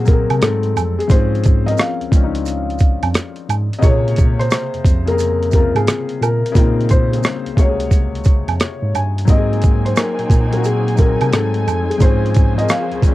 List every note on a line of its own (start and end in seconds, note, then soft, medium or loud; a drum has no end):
0.00 0.26 A#2 medium
0.00 0.05 F#3 medium
0.00 0.07 A#3 medium
0.00 0.09 C4 medium
0.00 0.44 F#4 medium
0.00 0.11 G#4 loud
0.05 0.38 F#3 medium
0.05 0.41 A#3 medium
0.05 0.43 A#4 medium
0.05 kick medium
0.05 closed hi-hat medium
0.05 maracas soft
0.09 0.42 C4 medium
0.09 0.44 G#4 medium
0.30 0.41 C3 medium
0.30 closed hi-hat soft
0.30 high woodblock medium
0.39 0.73 G#2 medium
0.39 0.99 F#3 medium
0.39 1.00 A3 medium
0.39 1.00 A4 medium
0.39 cross-stick loud
0.39 closed hi-hat medium
0.39 maracas medium
0.43 1.02 G#3 medium
0.43 1.01 C4 medium
0.63 closed hi-hat soft
0.76 0.96 F2 medium
0.76 closed hi-hat medium
0.76 high woodblock medium
0.76 maracas medium
0.99 1.09 G#4 medium
0.99 closed hi-hat medium
1.08 1.74 G#2 loud
1.08 1.44 F3 medium
1.08 1.45 C4 medium
1.08 1.46 C#4 medium
1.08 1.68 C5 loud
1.08 kick loud
1.08 closed hi-hat medium
1.08 maracas medium
1.14 1.47 G#4 loud
1.35 closed hi-hat soft
1.44 kick medium
1.44 closed hi-hat medium
1.44 maracas soft
1.65 2.00 F3 medium
1.65 2.01 C4 medium
1.65 1.79 D#5 loud
1.65 closed hi-hat medium
1.69 2.02 C#4 medium
1.69 2.03 A#4 medium
1.78 3.45 F5 medium
1.78 cross-stick loud
1.78 closed hi-hat medium
1.78 maracas medium
2.01 2.05 C#2 soft
2.01 closed hi-hat soft
2.11 2.98 C#2 medium
2.11 3.08 F3 medium
2.11 3.09 C4 medium
2.11 3.10 C#4 medium
2.11 kick medium
2.11 closed hi-hat medium
2.11 maracas soft
2.17 2.23 D4 medium
2.24 3.14 D#4 medium
2.35 closed hi-hat medium
2.46 closed hi-hat medium
2.46 maracas medium
2.70 closed hi-hat soft
2.79 kick medium
2.79 closed hi-hat medium
2.79 maracas soft
3.03 3.14 F2 medium
3.03 closed hi-hat soft
3.03 high woodblock medium
3.14 cross-stick loud
3.14 closed hi-hat medium
3.14 maracas medium
3.36 closed hi-hat soft
3.49 3.69 G#2 medium
3.49 closed hi-hat medium
3.49 high woodblock medium
3.49 maracas medium
3.73 closed hi-hat medium
3.79 4.67 C#3 medium
3.79 4.68 A#3 medium
3.79 3.83 D#5 medium
3.79 maracas medium
3.83 4.47 A#2 loud
3.83 4.69 C3 medium
3.83 4.70 G#4 loud
3.83 4.41 C#5 loud
3.83 kick loud
3.83 closed hi-hat medium
4.08 closed hi-hat soft
4.16 kick medium
4.16 closed hi-hat medium
4.16 maracas soft
4.39 5.09 C5 loud
4.39 closed hi-hat soft
4.51 cross-stick loud
4.51 closed hi-hat medium
4.51 maracas medium
4.73 4.78 F2 soft
4.73 closed hi-hat soft
4.85 5.71 F2 medium
4.85 kick medium
4.85 closed hi-hat medium
4.85 maracas soft
5.05 5.41 C#3 medium
5.05 5.42 A#3 medium
5.05 5.53 A#4 loud
5.05 closed hi-hat medium
5.10 5.43 C4 medium
5.10 5.44 G#4 medium
5.19 closed hi-hat medium
5.19 maracas medium
5.43 closed hi-hat soft
5.51 5.60 C3 medium
5.51 6.24 A#3 medium
5.51 5.76 A#4 medium
5.51 kick medium
5.51 closed hi-hat medium
5.51 maracas soft
5.55 6.26 C#3 medium
5.55 6.25 C4 medium
5.55 6.26 F4 medium
5.75 5.86 G#2 medium
5.75 6.18 G#4 loud
5.75 closed hi-hat soft
5.75 high woodblock medium
5.87 cross-stick loud
5.87 closed hi-hat medium
5.87 maracas medium
6.09 closed hi-hat soft
6.21 6.41 A#2 loud
6.21 6.86 A#4 medium
6.21 closed hi-hat medium
6.21 high woodblock medium
6.21 maracas medium
6.46 closed hi-hat medium
6.52 7.20 A#2 loud
6.52 6.89 C#3 loud
6.52 6.90 A#3 medium
6.52 kick loud
6.52 maracas medium
6.56 6.91 C4 medium
6.56 6.92 D#4 medium
6.56 closed hi-hat medium
6.81 closed hi-hat soft
6.89 7.60 C5 loud
6.89 kick medium
6.89 closed hi-hat medium
6.89 maracas soft
7.10 7.46 C#3 medium
7.10 7.47 A#3 medium
7.10 closed hi-hat medium
7.14 7.48 C4 medium
7.14 7.49 G#4 medium
7.23 cross-stick loud
7.23 closed hi-hat medium
7.23 maracas medium
7.46 7.51 C#2 soft
7.46 closed hi-hat soft
7.55 8.44 C#2 medium
7.55 8.53 C#3 medium
7.55 8.54 A#3 medium
7.55 8.91 C#5 medium
7.55 kick medium
7.55 closed hi-hat medium
7.55 maracas soft
7.59 8.55 C3 medium
7.59 7.68 F#4 medium
7.68 8.59 G#4 medium
7.80 closed hi-hat medium
7.91 kick medium
7.91 closed hi-hat medium
7.91 maracas medium
8.15 closed hi-hat soft
8.24 kick medium
8.24 closed hi-hat medium
8.24 maracas soft
8.48 8.59 F2 medium
8.48 closed hi-hat soft
8.48 high woodblock medium
8.60 8.92 C#5 medium
8.60 cross-stick loud
8.60 closed hi-hat medium
8.60 maracas medium
8.82 8.93 G#2 medium
8.94 9.25 G2 medium
8.94 9.27 G#5 medium
8.94 closed hi-hat medium
8.94 high woodblock medium
8.94 maracas medium
9.18 closed hi-hat medium
9.25 9.92 G#2 medium
9.25 10.13 F#3 medium
9.25 11.31 F#3 medium
9.25 10.14 A#3 medium
9.25 11.31 A#3 medium
9.25 11.31 C4 medium
9.25 11.98 D#4 medium
9.25 13.15 G#5 medium
9.25 kick loud
9.25 closed hi-hat medium
9.25 maracas medium
9.29 10.15 C4 medium
9.29 9.38 G4 medium
9.29 9.87 D#5 medium
9.38 10.19 G#4 medium
9.53 closed hi-hat soft
9.62 kick medium
9.62 closed hi-hat medium
9.62 maracas soft
9.85 9.97 C5 medium
9.85 closed hi-hat soft
9.96 10.52 A#4 medium
9.96 cross-stick loud
9.96 closed hi-hat medium
9.96 maracas medium
10.19 10.23 A#2 soft
10.19 closed hi-hat soft
10.30 11.16 A#2 medium
10.30 kick medium
10.30 closed hi-hat medium
10.30 maracas soft
10.51 10.86 F#3 medium
10.51 10.88 A#3 medium
10.51 10.88 C4 medium
10.51 10.65 A#4 medium
10.51 closed hi-hat medium
10.57 10.89 F#4 medium
10.64 11.00 G#4 medium
10.64 closed hi-hat medium
10.64 maracas medium
10.88 closed hi-hat soft
10.96 11.28 F#3 medium
10.96 11.32 A#3 medium
10.96 11.32 C4 medium
10.96 11.30 A#4 medium
10.96 kick medium
10.96 closed hi-hat medium
10.96 maracas soft
11.02 11.34 G#4 medium
11.21 11.32 C3 medium
11.21 closed hi-hat soft
11.21 high woodblock medium
11.29 11.64 G#2 medium
11.29 11.90 F#3 medium
11.29 12.00 F#3 medium
11.29 11.91 A3 medium
11.29 11.92 C4 medium
11.29 12.00 A4 medium
11.29 11.91 A4 medium
11.29 13.15 C5 medium
11.29 closed hi-hat medium
11.29 maracas medium
11.34 11.93 G#3 medium
11.34 cross-stick loud
11.54 closed hi-hat soft
11.67 11.87 F2 medium
11.67 closed hi-hat medium
11.67 high woodblock medium
11.67 maracas soft
11.89 12.01 G#4 medium
11.89 closed hi-hat medium
11.98 12.65 G#2 loud
11.98 13.15 C#3 medium
11.98 12.35 F3 medium
11.98 13.15 F3 medium
11.98 13.15 G#3 medium
11.98 12.36 C4 medium
11.98 12.37 C#4 medium
11.98 12.59 C5 loud
11.98 kick loud
11.98 closed hi-hat medium
11.98 maracas medium
12.04 12.38 G#4 loud
12.26 closed hi-hat soft
12.34 kick medium
12.34 closed hi-hat medium
12.34 maracas soft
12.56 12.91 F3 medium
12.56 12.92 C4 medium
12.56 12.70 D#5 loud
12.56 closed hi-hat soft
12.60 12.93 C#4 medium
12.60 12.94 A#4 medium
12.69 13.15 F5 loud
12.69 cross-stick loud
12.69 closed hi-hat medium
12.69 maracas medium
12.91 12.96 C#2 soft
12.91 closed hi-hat soft
13.02 13.15 C#2 medium
13.02 13.15 F3 medium
13.02 13.15 C4 medium
13.02 13.15 C#4 medium
13.02 kick medium
13.02 closed hi-hat medium
13.02 maracas soft
13.08 13.14 D4 medium